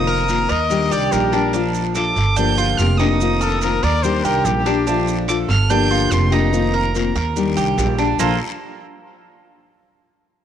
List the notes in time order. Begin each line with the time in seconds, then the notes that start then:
Already playing: F1 D#3 A#3 C4 F4 D#6
0.07 A#4
0.28 D#3 A#3 C4 F4, short guiro, maracas
0.49 D#2 A#4 D#5, muted nylon-string guitar stroke, short guiro, maracas
0.70 D#3 G3 D4 G4, long guiro, maracas
0.92 C2 G4 D5, maracas
1.11 A#1 D#3 G3 D4 G4 A#4, short guiro, maracas
1.32 G3 D4 G4, short guiro, maracas
1.53 F3 D4 F4, long guiro, maracas
1.74 maracas
1.95 F3 A3 D4 F4 A4 D6, short guiro, maracas
2.16 G1, muted nylon-string guitar stroke, short guiro, maracas
2.36 D3 F3 A#3 D4 G4 G6, long guiro, maracas
2.58 F4, maracas
2.78 F1 F3 A#3 D4 G4 F6, short guiro, maracas
2.98 F3 A#3 D4 D#4 G4 D#6, short guiro, maracas
3.20 D#3 A#3 C4 F4, long guiro, maracas
3.41 A4 A#4, maracas
3.62 D#3 A#3 C4 F4 A#4, short guiro, maracas
3.83 D#2 A#4 D5, muted nylon-string guitar stroke, short guiro, maracas
4.03 D#3 G3 D4 G4 C5, long guiro, maracas
4.24 C2 G4 A#4, maracas
4.45 A#1 D#3 G3 D4 G4, short guiro, maracas
4.66 G3 D4 G4, short guiro, maracas
4.87 F3 A3 D4 F4, long guiro, maracas
5.08 maracas
5.28 F3 A3 D4 F4 A4 D6, short guiro, maracas
5.48 G1 F6, muted nylon-string guitar stroke, short guiro, maracas
5.70 D3 F3 A#3 D4 G4 G6, long guiro, maracas
5.91 F4
6.10 F1 F3 A#3 D4 G4 C6, short guiro, maracas
6.31 F3 A#3 D4 D#4 G4 A#5, short guiro, maracas
6.52 D#3 A#3 C4 F4, long guiro, maracas
6.74 A#4
6.94 D#3 A#3 C4 F4, short guiro, maracas
7.15 D#2 A#4, muted nylon-string guitar stroke, short guiro, maracas
7.36 D#3 G3 D4 G4, long guiro, maracas
7.57 C2 G4, maracas
7.78 A#1 D#3 G3 D4 G4, short guiro, maracas
7.99 G3 D4 G4, short guiro, maracas
8.19 A#1 A#2 F3 A3 A#3 D4 F4 A4, long guiro, maracas